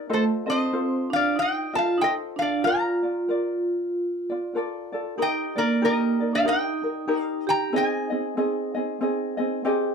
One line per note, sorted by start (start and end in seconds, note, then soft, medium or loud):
0.09 0.27 A3 medium
0.09 0.47 F4 medium
0.09 0.46 A4 medium
0.09 0.47 C5 medium
0.09 0.23 C5 medium
0.09 0.45 D#5 medium
0.14 0.24 A4 medium
0.46 1.06 C4 medium
0.46 0.72 F4 soft
0.46 0.73 A4 soft
0.46 0.73 D#5 medium
0.46 1.13 D#5 medium
0.51 1.09 C5 medium
0.72 1.76 F4 medium
0.72 1.75 A4 medium
0.72 1.74 C5 medium
1.10 1.35 D4 medium
1.10 1.36 F5 medium
1.16 1.38 D5 medium
1.36 1.71 D#4 medium
1.36 1.75 G5 medium
1.42 1.75 D#5 medium
1.73 1.98 F4 medium
1.73 2.00 F4 soft
1.73 2.01 A4 soft
1.73 2.00 D#5 medium
1.73 2.02 A5 medium
1.78 2.01 F5 medium
1.98 2.15 D#4 medium
1.98 2.39 F4 medium
1.98 2.38 C5 medium
1.98 2.11 G5 medium
2.03 2.39 A4 medium
2.03 2.39 D#5 medium
2.03 2.14 D#5 medium
2.36 2.61 D4 medium
2.36 2.65 F5 medium
2.40 2.65 F4 soft
2.40 2.65 A4 soft
2.40 2.64 D5 medium
2.63 4.50 F4 medium
2.63 3.03 F4 medium
2.63 3.03 A#4 medium
2.63 4.51 A#5 medium
2.67 3.02 D5 medium
2.67 4.52 F5 medium
3.03 3.28 F4 soft
3.03 3.28 D5 soft
3.28 4.30 F4 medium
3.28 4.54 A#4 medium
3.28 4.30 D5 medium
4.30 4.54 F4 soft
4.30 4.55 D5 medium
4.55 4.93 F4 medium
4.55 4.92 A4 medium
4.55 4.92 A#4 medium
4.55 4.91 D5 medium
4.92 5.18 F4 soft
4.92 5.17 A4 soft
4.92 5.18 D5 soft
5.18 5.56 D#4 medium
5.18 5.53 D#4 medium
5.18 5.56 G4 medium
5.18 5.55 A#4 medium
5.22 5.55 D#5 medium
5.22 5.59 G5 medium
5.56 5.80 A#3 medium
5.56 5.81 D#4 soft
5.56 5.81 A#4 soft
5.56 5.81 A#4 medium
5.56 5.82 D5 medium
5.56 5.84 D5 medium
5.82 6.30 A#3 medium
5.82 6.20 D#4 medium
5.82 6.20 G4 medium
5.82 6.20 A#4 medium
5.82 6.30 A#4 medium
5.82 6.35 D#5 medium
6.20 6.44 D#4 soft
6.20 6.44 A#4 soft
6.20 6.46 D5 soft
6.33 6.45 D4 medium
6.33 6.46 D5 medium
6.33 6.47 F5 medium
6.44 6.83 D#4 medium
6.44 7.43 D#4 medium
6.44 6.83 G4 medium
6.44 6.82 A#4 medium
6.44 7.44 D#5 medium
6.49 7.22 G5 medium
6.83 7.07 D#4 soft
6.83 7.07 A#4 medium
7.08 7.72 D#4 medium
7.08 7.72 G4 medium
7.08 7.72 A#4 medium
7.22 7.48 F5 medium
7.47 7.71 G4 medium
7.47 7.72 G5 medium
7.47 7.75 A#5 loud
7.73 8.10 C4 medium
7.73 9.59 D#4 medium
7.73 8.10 G#4 medium
7.73 8.09 D#5 medium
7.73 9.61 D#5 medium
7.77 9.61 G#5 medium
8.10 8.36 C4 soft
8.10 8.36 G#4 soft
8.10 8.36 D#5 medium
8.37 8.74 C4 medium
8.37 8.74 G#4 medium
8.37 8.73 D#5 medium
8.75 9.00 C4 soft
8.75 9.01 G#4 soft
8.75 9.00 D#5 medium
9.01 9.38 C4 medium
9.01 9.37 G#4 medium
9.01 9.36 D#5 medium
9.37 9.63 C4 medium
9.37 9.64 G#4 medium
9.37 9.63 D#5 medium
9.65 9.95 C4 medium
9.65 9.95 G4 medium
9.65 9.95 G#4 loud
9.65 9.95 D#5 medium